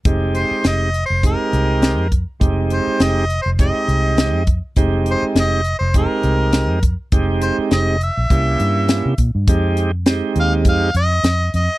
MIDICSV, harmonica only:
0, 0, Header, 1, 2, 480
1, 0, Start_track
1, 0, Key_signature, -4, "minor"
1, 0, Tempo, 588813
1, 45, Time_signature, 4, 2, 24, 8
1, 9604, End_track
2, 0, Start_track
2, 0, Title_t, "Harmonica"
2, 0, Program_c, 0, 22
2, 293, Note_on_c, 0, 72, 83
2, 513, Note_off_c, 0, 72, 0
2, 545, Note_on_c, 0, 75, 77
2, 834, Note_off_c, 0, 75, 0
2, 861, Note_on_c, 0, 72, 81
2, 1003, Note_off_c, 0, 72, 0
2, 1029, Note_on_c, 0, 70, 61
2, 1706, Note_off_c, 0, 70, 0
2, 2225, Note_on_c, 0, 72, 78
2, 2462, Note_on_c, 0, 75, 92
2, 2474, Note_off_c, 0, 72, 0
2, 2775, Note_off_c, 0, 75, 0
2, 2788, Note_on_c, 0, 72, 73
2, 2856, Note_off_c, 0, 72, 0
2, 2944, Note_on_c, 0, 75, 74
2, 3624, Note_off_c, 0, 75, 0
2, 4169, Note_on_c, 0, 72, 83
2, 4268, Note_off_c, 0, 72, 0
2, 4404, Note_on_c, 0, 75, 93
2, 4686, Note_off_c, 0, 75, 0
2, 4717, Note_on_c, 0, 72, 80
2, 4854, Note_off_c, 0, 72, 0
2, 4872, Note_on_c, 0, 70, 65
2, 5549, Note_off_c, 0, 70, 0
2, 6055, Note_on_c, 0, 72, 72
2, 6162, Note_off_c, 0, 72, 0
2, 6300, Note_on_c, 0, 75, 80
2, 6518, Note_off_c, 0, 75, 0
2, 6549, Note_on_c, 0, 76, 90
2, 7466, Note_off_c, 0, 76, 0
2, 8480, Note_on_c, 0, 77, 97
2, 8581, Note_off_c, 0, 77, 0
2, 8710, Note_on_c, 0, 77, 92
2, 8922, Note_off_c, 0, 77, 0
2, 8937, Note_on_c, 0, 75, 102
2, 9378, Note_off_c, 0, 75, 0
2, 9422, Note_on_c, 0, 75, 91
2, 9604, Note_off_c, 0, 75, 0
2, 9604, End_track
0, 0, End_of_file